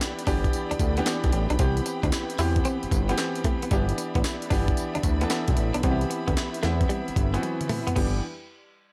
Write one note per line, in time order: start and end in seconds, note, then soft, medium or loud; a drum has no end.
0.00 0.27 E3 medium
0.00 0.27 B3 medium
0.00 0.27 D4 medium
0.00 1.57 E4 medium
0.00 0.28 G4 medium
0.00 1.57 D5 medium
0.00 3.68 G5 medium
0.00 3.68 B5 medium
0.00 snare loud
0.00 clap loud
0.00 closed hi-hat medium
0.00 tambourine loud
0.19 closed hi-hat medium
0.27 0.48 G1 medium
0.27 0.76 E3 loud
0.27 0.76 B3 medium
0.27 0.38 D4 medium
0.27 0.77 D4 medium
0.27 0.77 G4 loud
0.27 kick medium
0.27 open hi-hat medium
0.27 tambourine medium
0.44 kick medium
0.44 closed hi-hat medium
0.53 closed hi-hat medium
0.53 tambourine medium
0.71 0.75 D2 soft
0.71 0.76 D4 medium
0.71 closed hi-hat soft
0.79 1.01 D2 medium
0.79 muted clean electric guitar stroke soft
0.79 kick loud
0.79 closed hi-hat medium
0.79 tambourine medium
0.97 1.44 E3 medium
0.97 1.03 B3 medium
0.97 1.44 B3 medium
0.97 1.44 D4 medium
0.97 1.44 G4 loud
0.97 closed hi-hat soft
1.06 1.17 B3 medium
1.06 snare loud
1.06 clap loud
1.06 closed hi-hat medium
1.06 tambourine medium
1.24 1.31 B1 medium
1.24 kick medium
1.24 closed hi-hat medium
1.32 1.47 A1 loud
1.32 muted clean electric guitar stroke soft
1.32 closed hi-hat medium
1.50 1.57 B1 loud
1.50 1.56 D4 medium
1.50 closed hi-hat medium
1.59 1.81 C2 loud
1.59 2.18 E3 medium
1.59 2.18 B3 medium
1.59 1.70 C4 medium
1.59 2.19 C4 medium
1.59 3.70 E4 medium
1.59 2.19 G4 medium
1.59 3.69 B4 medium
1.59 kick loud
1.59 closed hi-hat medium
1.59 tambourine medium
1.77 closed hi-hat medium
1.86 muted clean electric guitar stroke soft
1.86 closed hi-hat medium
1.86 tambourine medium
2.03 2.11 D2 medium
2.03 2.09 D4 medium
2.03 kick loud
2.03 closed hi-hat soft
2.12 snare loud
2.12 clap loud
2.12 closed hi-hat medium
2.12 tambourine loud
2.30 closed hi-hat medium
2.38 2.60 E2 medium
2.38 2.88 E3 loud
2.38 2.89 B3 medium
2.38 2.89 C4 medium
2.38 2.50 E4 medium
2.38 2.89 G4 loud
2.38 open hi-hat medium
2.38 tambourine medium
2.56 kick medium
2.56 closed hi-hat soft
2.65 2.76 C4 loud
2.65 closed hi-hat medium
2.65 tambourine medium
2.83 2.87 G1 soft
2.83 closed hi-hat soft
2.91 3.13 G1 loud
2.91 muted clean electric guitar stroke soft
2.91 kick loud
2.91 closed hi-hat medium
2.91 tambourine medium
3.09 3.56 E3 loud
3.09 3.15 B3 medium
3.09 3.56 B3 medium
3.09 3.56 C4 medium
3.09 3.56 G4 loud
3.09 closed hi-hat soft
3.18 muted clean electric guitar stroke soft
3.18 snare loud
3.18 clap medium
3.18 closed hi-hat medium
3.18 tambourine loud
3.36 closed hi-hat medium
3.44 3.56 A3 medium
3.44 kick medium
3.44 closed hi-hat medium
3.62 3.68 B3 medium
3.62 closed hi-hat medium
3.71 3.93 G1 loud
3.71 4.31 E3 medium
3.71 3.83 G3 medium
3.71 4.31 B3 medium
3.71 4.31 D4 medium
3.71 7.92 E4 medium
3.71 4.31 G4 loud
3.71 5.82 D5 medium
3.71 7.92 E5 medium
3.71 7.92 B5 medium
3.71 kick loud
3.71 closed hi-hat medium
3.71 tambourine medium
3.89 closed hi-hat medium
3.98 muted clean electric guitar stroke soft
3.98 closed hi-hat medium
3.98 tambourine medium
4.15 4.23 A1 medium
4.15 4.21 B3 medium
4.15 kick loud
4.15 closed hi-hat medium
4.24 snare loud
4.24 clap loud
4.24 closed hi-hat medium
4.24 tambourine loud
4.42 closed hi-hat medium
4.50 4.73 G1 medium
4.50 5.01 E3 loud
4.50 5.01 B3 medium
4.50 4.62 D4 medium
4.50 5.01 D4 medium
4.50 5.01 G4 medium
4.50 kick medium
4.50 open hi-hat medium
4.50 tambourine medium
4.68 kick medium
4.68 closed hi-hat soft
4.77 closed hi-hat medium
4.77 tambourine medium
4.95 4.99 D2 medium
4.95 5.01 D4 medium
4.95 closed hi-hat soft
5.03 5.26 D2 medium
5.03 muted clean electric guitar stroke soft
5.03 kick loud
5.03 closed hi-hat medium
5.03 tambourine medium
5.21 5.68 E3 loud
5.21 5.27 B3 medium
5.21 5.68 B3 medium
5.21 5.69 D4 medium
5.21 5.69 A4 loud
5.21 closed hi-hat soft
5.30 5.42 B3 medium
5.30 snare loud
5.30 clap medium
5.30 closed hi-hat medium
5.30 tambourine medium
5.48 5.56 B1 medium
5.48 kick loud
5.48 closed hi-hat medium
5.57 5.72 A1 loud
5.57 muted clean electric guitar stroke soft
5.57 closed hi-hat medium
5.74 5.82 B1 medium
5.74 5.80 D4 medium
5.74 closed hi-hat medium
5.83 6.05 C2 loud
5.83 6.43 E3 medium
5.83 6.43 B3 medium
5.83 5.95 C4 medium
5.83 6.44 C4 medium
5.83 5.93 F#4 medium
5.83 7.94 B4 medium
5.83 kick loud
5.83 closed hi-hat medium
5.91 6.47 G4 medium
6.01 closed hi-hat medium
6.10 muted clean electric guitar stroke soft
6.10 closed hi-hat medium
6.28 6.35 D2 medium
6.28 6.33 B3 medium
6.28 kick loud
6.28 closed hi-hat soft
6.37 snare loud
6.37 clap loud
6.37 closed hi-hat medium
6.54 closed hi-hat medium
6.63 6.85 E2 loud
6.63 7.13 E3 medium
6.63 6.74 A3 medium
6.63 7.13 B3 medium
6.63 7.14 C4 medium
6.63 7.14 E4 loud
6.63 snare medium
6.63 closed hi-hat medium
6.81 kick medium
6.81 closed hi-hat soft
6.89 7.01 G3 loud
6.89 closed hi-hat medium
7.08 7.12 G1 medium
7.08 closed hi-hat soft
7.16 7.38 G1 loud
7.16 muted clean electric guitar stroke soft
7.16 kick loud
7.16 closed hi-hat medium
7.34 7.81 E3 medium
7.34 7.40 B3 medium
7.34 7.81 B3 medium
7.34 7.81 C4 medium
7.34 7.81 F#4 loud
7.34 closed hi-hat soft
7.43 muted clean electric guitar stroke soft
7.43 closed hi-hat medium
7.43 high tom medium
7.61 closed hi-hat medium
7.61 mid tom medium
7.69 7.81 A3 medium
7.69 mid tom medium
7.69 open hi-hat medium
7.87 7.93 B3 medium
7.87 closed hi-hat medium
7.87 floor tom medium
7.96 8.21 G1 loud
7.96 8.21 E3 medium
7.96 8.21 G3 medium
7.96 8.12 B3 medium
7.96 8.21 B3 medium
7.96 8.21 D4 medium
7.96 8.21 E4 medium
7.96 8.21 G4 medium
7.96 8.21 B4 medium
7.96 8.21 G5 medium
7.96 kick loud
7.96 crash medium